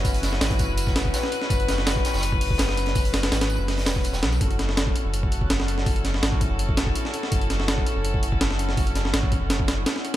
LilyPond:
<<
  \new Staff \with { instrumentName = "Synth texture" } { \time 4/4 \key fis \minor \tempo 4 = 165 fis'''1~ | fis'''1~ | fis'''1 | r1 |
r1 | r1 | r1 | }
  \new Staff \with { instrumentName = "String section" } { \time 4/4 \key fis \minor <cis' e' fis' b'>1~ | <cis' e' fis' b'>1~ | <cis' e' fis' b'>1 | <cis' e' fis' a'>1~ |
<cis' e' fis' a'>1~ | <cis' e' fis' a'>1~ | <cis' e' fis' a'>1 | }
  \new Staff \with { instrumentName = "Sub bass" } { \clef bass \time 4/4 \key fis \minor fis,,4 gis,,8. fis,,4~ fis,,16 r4 | fis,,4. r16 fis,,4~ fis,,16 fis,,4~ | fis,,4 gis,,8. fis,,8. e,,4 b,,8 | fis,,4. r16 fis,,4~ fis,,16 fis,,4~ |
fis,,4 gis,,8. fis,,4~ fis,,16 r4 | fis,,4. r16 fis,,4~ fis,,16 fis,,4~ | fis,,4 gis,,8. fis,,4~ fis,,16 r4 | }
  \new DrumStaff \with { instrumentName = "Drums" } \drummode { \time 4/4 <hho bd tamb>16 hh16 <hh sn tamb>16 sn16 <hh sn tamb>16 <hh bd>16 <hh bd tamb>8 <hh tamb>16 <bd sn>16 <hh sn tamb>16 bd16 <hh sn tamb>16 sn16 <hh tamb>16 sn16 | <hh bd tamb>16 hh16 <hh sn tamb>16 sn16 <hh sn tamb>16 <bd sn>16 <hh sn tamb>16 <sn tamb>32 <sn tamb>32 <hh tamb>16 bd16 <hh hho>16 bd16 <hh sn tamb>16 sn16 <hh tamb>16 <hh sn>16 | <hho bd tamb>16 hh16 <hh sn tamb>16 <hh sn>16 <hh sn tamb>16 <hh sn>16 tamb8 <hh hho sn>16 sn16 <hh sn tamb>16 <bd sn>16 <hh tamb>16 <sn tamb>16 <hh sn>16 tamb16 | <hh bd>16 hh16 <hh sn>16 sn16 <hh sn>16 bd16 hh8 hh16 bd16 hh16 bd16 <hh sn>16 sn16 hh16 sn16 |
<hho bd>16 hh16 <hh sn>16 sn16 <hh sn>16 bd16 <hh bd>8 hh16 bd16 <hh sn>16 bd16 hh16 sn16 hh16 sn16 | <hh bd>16 hh16 <hh sn>16 sn16 <hh sn>16 bd16 hh8 hh16 bd16 hh16 bd16 <hh sn>16 sn16 hh16 sn16 | <hho bd>16 hh16 <hh sn>16 sn16 <hh sn>16 bd16 <hh bd>8 <hh sn>16 bd16 <hh sn>8 <hh sn>16 sn16 hh8 | }
>>